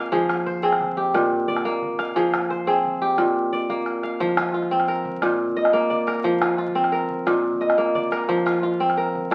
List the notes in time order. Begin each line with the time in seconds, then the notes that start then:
Already playing: A#2 A#3 C4 G4 D5 F5
0.12 F3 G#4, calabash thump
0.29 calabash click
0.46 C5, calabash thump
0.63 C4 G#4, calabash click
0.73 calabash click
0.81 calabash thump, calabash click
0.97 G4
1.14 A#2, calabash thump, calabash click
1.23 calabash click
1.48 D5, calabash thump
1.57 calabash click
1.65 A#3
1.82 calabash thump
1.99 F5, calabash click
2.16 F3 G#4, calabash thump, calabash click
2.34 calabash click
2.50 C5, calabash thump
2.67 C4 G#4
2.85 calabash thump
3.02 G4
3.18 A#2, calabash thump, calabash click
3.52 D5, calabash thump
3.69 A#3, calabash thump
3.86 calabash click
4.03 F5, calabash click
4.20 F3, calabash thump
4.29 calabash click
4.37 F4, calabash click
4.54 F4
4.63 calabash thump, calabash click
4.71 C4
4.80 calabash click
4.88 A#4, calabash click
5.05 calabash thump
5.22 A#2, calabash click
5.31 calabash click
5.48 calabash thump
5.56 D#5, calabash click
5.65 calabash click
5.73 A#3, calabash click
5.90 D5, calabash thump, calabash click
6.07 A#4, calabash click
6.24 F3, calabash thump
6.41 F4, calabash click
6.58 F4
6.67 calabash thump, calabash click
6.75 C4
6.84 calabash click
6.92 A#4, calabash click
7.10 calabash thump
7.27 A#2, calabash click
7.53 calabash thump
7.61 D#5, calabash click
7.70 calabash click
7.78 A#3, calabash click
7.95 D5, calabash thump, calabash click
8.12 A#4, calabash click
8.29 F3, calabash thump
8.38 calabash click
8.46 F4, calabash click
8.63 F4
8.73 calabash thump, calabash click
8.80 C4
8.90 calabash click
8.97 A#4, calabash click
9.15 calabash thump
9.31 A#2